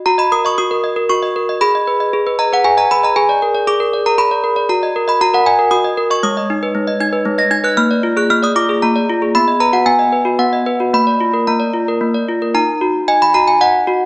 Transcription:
\new Staff \with { instrumentName = "Handbells" } { \time 3/4 \key ees \minor \tempo 4 = 116 << { bes''16 ces'''16 ees'''16 des'''16 ees'''4 des'''4 | ces'''4. bes''16 ges''16 aes''16 bes''16 ces'''16 bes''16 | aes''4 d'''8. bes''16 ces'''4 | bes''8. ces'''16 bes''16 ges''16 aes''8 ees'''8. des'''16 |
ees'''4. aes'''8. bes'''16 aes'''16 ges'''16 | f'''8. ges'''16 f'''16 ees'''16 d'''8 bes''8 r8 | b''8 bes''16 fis''16 aes''4 fis''4 | ces'''4 bes''4 r4 |
bes''4 aes''16 ces'''16 bes''16 aes''16 ges''4 | } \\ { ges'16 ees''16 bes'16 ees''16 ges'16 bes'16 ees''16 bes'16 ges'16 ees''16 bes'16 ees''16 | aes'16 ees''16 ces''16 ees''16 aes'16 ces''16 ees''16 ces''16 aes'16 ees''16 ces''16 ees''16 | aes'16 d''16 bes'16 d''16 aes'16 bes'16 d''16 bes'16 aes'16 d''16 bes'16 d''16 | ges'16 ees''16 bes'16 ees''16 ges'16 bes'16 ees''16 bes'16 ges'16 ees''16 bes'16 ees''16 |
aes16 ees''16 ees'16 ces''16 aes16 ees''16 ees'16 ces''16 aes16 ees''16 ees'16 ces''16 | bes16 d''16 f'16 aes'16 bes16 d''16 f'16 aes'16 bes16 d''16 f'16 aes'16 | b16 dis''16 b'16 fis'16 b16 dis''16 b'16 fis'16 b16 dis''16 b'16 fis'16 | bes16 d''16 f'16 bes'16 bes16 d''16 f'16 bes'16 bes16 d''16 f'16 bes'16 |
ees'8 ges'8 ees''8 ges'8 ees''8 ges'8 | } >> }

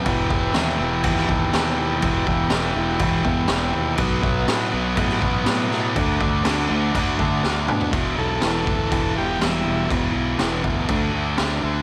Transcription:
<<
  \new Staff \with { instrumentName = "Transistor combo organ" } { \time 4/4 \key e \minor \tempo 4 = 122 <g' b' e''>1~ | <g' b' e''>1 | <fis' b' dis''>1 | <fis' a' d''>1 |
r1 | r1 | }
  \new Staff \with { instrumentName = "Transistor combo organ" } { \time 4/4 \key e \minor r1 | r1 | r1 | r1 |
r8 a'8 a'4. g'8 <g e'>4 | r1 | }
  \new Staff \with { instrumentName = "Distorted electric guitar" } { \clef bass \time 4/4 \key e \minor <e, b, e>8 <e, b, e>8 <e, b, e>8 <e, b, e>8 <e, b, e>8 <e, b, e>8 <e, b, e>8 <e, b, e>8 | <e, b, e>8 <e, b, e>8 <e, b, e>8 <e, b, e>8 <e, b, e>8 <e, b, e>8 <e, b, e>8 <e, b, e>8 | <b, fis b>8 <b, fis b>8 <b, fis b>8 <b, fis b>8 <b, fis b>8 <b, fis b>8 <b, fis b>8 <b, fis b>8 | <d a d'>8 <d a d'>8 <d a d'>8 <d a d'>8 <d a d'>8 <d a d'>8 <d a d'>8 <d a d'>8 |
<e, b, e>4 <e, b, e>8 <e, b, e>8 <e, b, e>4 <e, b, e>8 <e, b, e>8 | <e, b, e>4 <e, b, e>8 <e, b, e>8 <d a d'>4 <d a d'>8 <d a d'>8 | }
  \new Staff \with { instrumentName = "Fingered electric bass" } { \clef bass \time 4/4 \key e \minor e,,4 dis,8 e,,8 dis,8 dis,8 dis,4 | e,,4 e,,8 e,,8 e,,8 e,8 e,,8 dis,8 | b,,4 a,8 b,,8 a,8 a,,8 a,4 | d,4 d,8 d,8 d,8 d8 d,8 b,8 |
e,,8 b,,8 e,,8 d,8 e,,8 e,,8 e,,8 e,,8 | e,,8 b,,8 e,,8 d,8 d,8 d,8 d,8 d,8 | }
  \new DrumStaff \with { instrumentName = "Drums" } \drummode { \time 4/4 <cymc bd>8 bd8 <cymc sn>4 <cymc bd>16 sn16 bd8 <cymc sn>4 | <cymc bd>8 bd8 <cymc sn>4 <cymc bd>8 bd8 <cymc sn>4 | <cymc bd>8 bd8 <cymc sn>4 <cymc bd>16 sn16 bd8 <cymc sn>8 sn8 | <cymc bd>8 bd8 <cymc sn>4 <cymc bd>8 bd8 sn8 toml16 tomfh16 |
<cymc bd>4 <cymc sn>8 bd8 <cymc bd>4 <cymc sn>4 | <cymc bd>4 <cymc sn>8 bd8 <cymc bd>4 <cymc sn>4 | }
>>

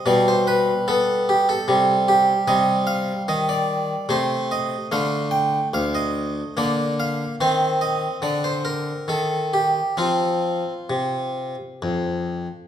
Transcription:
<<
  \new Staff \with { instrumentName = "Harpsichord" } { \time 3/4 \key c \dorian \tempo 4 = 73 d''16 c''16 b'8 a'8 g'16 a'8. g'8 | ees''8 f''8 ees''16 d''8. c''8 ees''8 | f''8 g''8 f''16 ees''8. d''8 f''8 | c''8 ees''8 d''16 c''16 bes'8 a'8 g'8 |
f'2 r4 | }
  \new Staff \with { instrumentName = "Harpsichord" } { \clef bass \time 3/4 \key c \dorian << { g2 g4 | g2 a4 | a2 bes4 | c'2. |
r2. | } \\ { b,4 b4 c4 | c4 ees4 c4 | d4 d,4 d4 | ees4 d4 ees4 |
<f c'>4 c4 f,4 | } >> }
>>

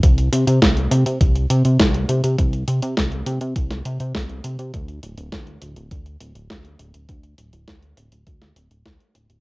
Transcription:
<<
  \new Staff \with { instrumentName = "Analog synth bass" } { \clef bass \time 4/4 \key c \major \tempo 4 = 102 c,8 c16 c16 c,8 c16 c16 c,8 c16 c16 c,8 c16 c16 | c,8 c16 c16 c,8 c16 c16 c,8 c16 c16 c,8 c16 c16 | d,8 d,,16 d,,16 d,8 d,,16 d,,16 d,8 d,,16 d,,16 d,8 d,,16 d,,16 | d,8 d,,16 d,,16 d,8 d,,16 d,,16 d,8 d,,16 d,,16 d,16 r16 d,,16 d,,16 | }
  \new DrumStaff \with { instrumentName = "Drums" } \drummode { \time 4/4 <hh bd>16 hh16 hh16 hh16 <hh bd sn>16 hh16 hh16 hh16 <hh bd>16 hh16 hh16 hh16 <hh bd sn>16 hh16 hh16 hh16 | <hh bd>16 hh16 hh16 hh16 <hh bd sn>16 hh16 hh16 hh16 <hh bd>16 <hh sn>16 hh16 hh16 <hh bd sn>16 hh16 hh16 hh16 | <hh bd>16 hh16 hh16 hh16 <hh bd sn>16 hh16 hh16 hh16 <hh bd>16 hh16 hh16 hh16 <hh bd sn>16 hh16 hh16 hh16 | <hh bd>16 hh16 hh16 hh16 <hh bd sn>16 hh16 hh16 hh16 <hh bd>16 <hh sn>16 hh16 hh16 <hh bd sn>16 hh16 hh16 hh16 | }
>>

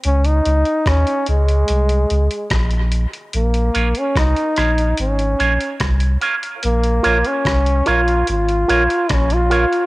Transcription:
<<
  \new Staff \with { instrumentName = "Clean electric guitar" } { \time 4/4 \key bes \minor \tempo 4 = 73 r1 | r8 <f' bes' des''>8 r8 <f' bes' des''>8 r8 <f' bes' des''>8 r8 <f' bes' des''>8 | r8 <f' bes' des''>8 r8 <f' bes' des''>8 r8 <f' bes' des''>8 r8 <f' bes' des''>8 | }
  \new Staff \with { instrumentName = "Trombone" } { \time 4/4 \key bes \minor des'16 ees'8. des'8 aes4. r4 | bes8. des'16 ees'4 des'4 r4 | bes8. des'8. f'8 f'4 des'16 f'8. | }
  \new Staff \with { instrumentName = "Sub bass" } { \clef bass \time 4/4 \key bes \minor des,8 des,16 r16 ees,16 r16 des,8 c,8 des,16 r16 bes,,8. r16 | bes,,8 bes,,16 r16 c,16 r16 bes,,8 aes,,8 bes,,16 r16 c,8 r8 | bes,,8 bes,,16 r16 c,8 bes,,8 aes,,8 bes,,16 r16 bes,,8. r16 | }
  \new DrumStaff \with { instrumentName = "Drums" } \drummode { \time 4/4 hh16 hh16 hh16 hh16 <hh bd ss>16 hh16 hh16 hh16 hh16 hh16 hh16 hh16 <hh bd ss>16 hh16 hh16 hh16 | hh16 hh16 hh16 hh16 <hh bd ss>16 hh16 <hh ss>16 hh16 hh16 hh16 hh16 hh16 <hh bd ss>16 hh16 hh16 hh16 | hh16 hh16 hh16 hh16 <hh bd ss>16 hh16 hh16 hh16 hh16 hh16 hh16 hh16 <hh bd ss>16 hh16 hh16 hh16 | }
>>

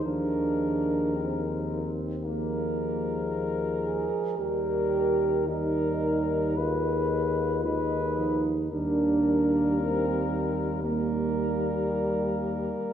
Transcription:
<<
  \new Staff \with { instrumentName = "Cornet" } { \time 4/4 \key ees \major \tempo 4 = 56 bes'4.~ bes'16 r16 bes'2 | bes'4 bes'4 ces''4 ces''8. r16 | bes'2 bes'2 | }
  \new Staff \with { instrumentName = "French horn section" } { \time 4/4 \key ees \major d'4 c'4 bes4 r8 aes'8 | g'4 ees'4 f'4 ees'4 | d'4 c'4 bes4 r4 | }
  \new Staff \with { instrumentName = "Euphonium" } { \clef bass \time 4/4 \key ees \major aes4.~ aes16 r16 aes2 | g4 g4 aes4 aes8. r16 | bes2 bes2 | }
  \new Staff \with { instrumentName = "Trombone" } { \clef bass \time 4/4 \key ees \major f4.~ f16 r16 f2 | ees4 ees4 ees4 ees8 f8 | g2 g2 | }
  \new Staff \with { instrumentName = "Tuba" } { \clef bass \time 4/4 \key ees \major ees,2.~ ees,8. r16 | ees,1 | ees,2.~ ees,8. r16 | }
>>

